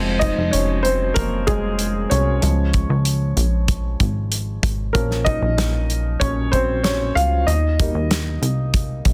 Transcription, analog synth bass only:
0.00 0.34 F1 medium
0.37 0.52 F1 medium
0.54 1.12 F1 medium
1.16 2.07 F1 medium
2.11 2.40 C2 medium
2.43 2.87 C#2 medium
2.90 3.34 C#2 loud
3.37 3.96 A#1 medium
4.00 4.59 G#1 medium
4.63 4.92 G#1 medium
4.95 5.39 A#1 loud
5.42 5.57 A#1 medium
5.57 6.17 A#1 loud
6.21 7.12 A#1 medium
7.16 7.45 C#2 medium
7.47 7.91 D#2 loud
7.95 8.39 D#2 medium
8.42 9.01 C2 medium
9.06 9.13 A#1 medium

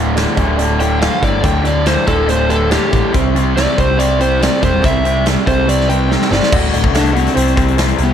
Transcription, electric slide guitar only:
0.81 1.01 G5 loud
1.02 1.22 F5 medium
1.24 1.44 D5 medium
1.45 1.65 G5 medium
1.67 1.87 D5 medium
1.87 2.07 C5 medium
2.07 2.28 A4 loud
2.30 2.50 C5 loud
2.50 2.70 A4 loud
2.72 3.13 G4 medium
3.57 3.77 D5 loud
3.80 3.99 C5 medium
3.99 4.19 D5 medium
4.21 4.41 C5 medium
4.43 4.62 D5 medium
4.63 4.83 C5 medium
4.85 5.25 E5 loud
5.48 5.67 C5 loud
5.69 5.89 D5 medium
5.89 6.30 G5 loud
6.32 6.52 D5 medium
6.96 7.15 D4 medium
7.16 7.75 C4 loud
8.03 8.13 B3 medium

